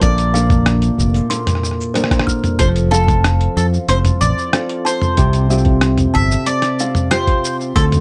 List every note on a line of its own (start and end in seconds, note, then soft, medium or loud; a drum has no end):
0.00 0.89 A#1 loud
0.00 2.60 A#2 medium
0.00 0.94 D3 medium
0.00 0.34 F4 medium
0.00 0.34 A#4 medium
0.00 1.91 D5 loud
0.00 kick loud
0.00 closed hi-hat medium
0.00 shaker soft
0.18 closed hi-hat medium
0.18 shaker soft
0.34 1.29 A#3 medium
0.34 1.94 D4 medium
0.34 1.95 A#4 medium
0.34 0.52 F5 loud
0.34 shaker medium
0.50 kick loud
0.50 closed hi-hat soft
0.50 mid tom medium
0.50 shaker soft
0.66 cross-stick loud
0.66 closed hi-hat medium
0.66 shaker soft
0.82 closed hi-hat soft
0.82 shaker soft
0.98 1.19 F1 medium
0.98 kick medium
0.98 shaker medium
1.14 closed hi-hat soft
1.14 shaker soft
1.30 1.94 A#3 medium
1.30 1.49 C6 medium
1.30 closed hi-hat medium
1.30 shaker soft
1.47 cross-stick soft
1.47 closed hi-hat soft
1.47 mid tom medium
1.47 shaker soft
1.55 cross-stick soft
1.63 cross-stick soft
1.63 shaker medium
1.71 cross-stick soft
1.81 shaker soft
1.94 2.66 A#3 medium
1.94 2.66 D4 medium
1.94 2.59 A#4 medium
1.94 2.25 C5 medium
1.94 cross-stick soft
1.94 closed hi-hat medium
1.94 shaker soft
2.04 cross-stick medium
2.11 kick medium
2.11 cross-stick medium
2.11 closed hi-hat soft
2.11 shaker soft
2.19 cross-stick medium
2.27 2.58 F6 medium
2.27 kick medium
2.27 shaker medium
2.44 closed hi-hat soft
2.44 mid tom medium
2.44 shaker soft
2.59 3.47 F1 loud
2.59 5.21 F3 medium
2.59 2.91 A4 medium
2.59 2.68 C5 loud
2.59 kick loud
2.59 closed hi-hat medium
2.59 shaker soft
2.76 closed hi-hat soft
2.76 shaker soft
2.91 3.88 C4 medium
2.91 4.53 F4 medium
2.91 3.56 A4 medium
2.91 4.53 A4 medium
2.91 3.10 F5 loud
2.91 shaker medium
3.08 kick loud
3.08 closed hi-hat soft
3.08 mid tom medium
3.08 shaker soft
3.24 cross-stick loud
3.24 closed hi-hat medium
3.24 shaker soft
3.41 closed hi-hat soft
3.56 3.77 F2 medium
3.56 3.66 A4 medium
3.56 shaker medium
3.74 shaker soft
3.88 4.09 F1 medium
3.88 4.52 C4 medium
3.88 3.98 C5 loud
3.88 4.07 C6 medium
3.88 closed hi-hat medium
3.88 shaker soft
4.05 closed hi-hat soft
4.05 mid tom medium
4.05 shaker soft
4.21 4.31 A1 medium
4.21 4.86 D5 loud
4.21 shaker medium
4.38 shaker soft
4.53 5.50 C4 medium
4.53 5.50 F4 medium
4.53 5.18 A4 medium
4.53 cross-stick loud
4.53 closed hi-hat medium
4.53 shaker soft
4.69 closed hi-hat soft
4.85 6.19 C5 medium
4.85 5.16 A5 medium
4.85 shaker medium
5.02 mid tom medium
5.02 shaker soft
5.17 6.05 C2 medium
5.17 7.76 C3 medium
5.17 5.50 G4 medium
5.17 kick loud
5.17 closed hi-hat medium
5.17 shaker soft
5.33 closed hi-hat soft
5.33 shaker soft
5.50 6.46 C4 medium
5.50 7.11 F4 medium
5.50 7.11 G4 medium
5.50 5.81 E5 medium
5.50 shaker medium
5.58 shaker soft
5.65 kick loud
5.65 closed hi-hat soft
5.81 cross-stick loud
5.81 closed hi-hat medium
5.81 shaker soft
5.98 closed hi-hat soft
5.98 mid tom medium
5.98 shaker soft
6.14 6.35 G1 medium
6.14 6.48 E5 loud
6.14 6.45 A5 medium
6.14 kick medium
6.31 shaker medium
6.46 7.11 C4 medium
6.46 7.10 D5 loud
6.46 closed hi-hat medium
6.46 shaker soft
6.62 cross-stick soft
6.62 closed hi-hat soft
6.62 shaker soft
6.79 6.98 F5 loud
6.79 shaker medium
6.95 mid tom medium
6.95 shaker soft
7.11 8.00 C4 medium
7.11 8.00 F4 medium
7.11 7.76 G4 medium
7.11 7.56 C5 loud
7.11 cross-stick loud
7.11 closed hi-hat medium
7.11 shaker soft
7.27 kick loud
7.27 closed hi-hat soft
7.45 shaker medium
7.61 shaker soft
7.76 8.00 D2 loud
7.76 8.00 D3 medium
7.76 7.84 A4 loud
7.76 8.00 A4 medium
7.76 7.94 C6 loud
7.76 kick loud
7.76 closed hi-hat medium
7.76 shaker soft
7.92 closed hi-hat soft
7.92 mid tom medium
7.92 shaker soft